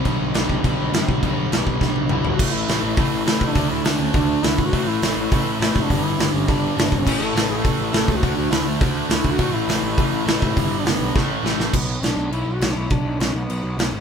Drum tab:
CC |x-x-x-x-|x-x-----|x-------|--------|
HH |--------|--------|--o-o-o-|o-o-o-o-|
SD |--o---o-|--o-o---|--o---o-|--o---o-|
T1 |--------|-----o--|--------|--------|
T2 |--------|------o-|--------|--------|
FT |--------|-------o|--------|--------|
BD |o--oo--o|o--oo---|o---o--o|o---o--o|

CC |--------|--------|x-------|--------|
HH |o-o-o-o-|o-o-o-o-|--o-o-o-|o-o-o-o-|
SD |--o---o-|--o---o-|--o---o-|--o---o-|
T1 |--------|--------|--------|--------|
T2 |--------|--------|--------|--------|
FT |--------|--------|--------|--------|
BD |o---o--o|o---o--o|o---o--o|o---o--o|

CC |--------|--------|x-x-x-x-|x-x-x-x-|
HH |o-o-o-o-|o-o-----|--------|--------|
SD |--o---o-|--o-o-oo|--o---o-|--o---o-|
T1 |--------|--------|--------|--------|
T2 |--------|--------|--------|--------|
FT |--------|--------|--------|--------|
BD |o---o--o|o---o---|o-------|o-------|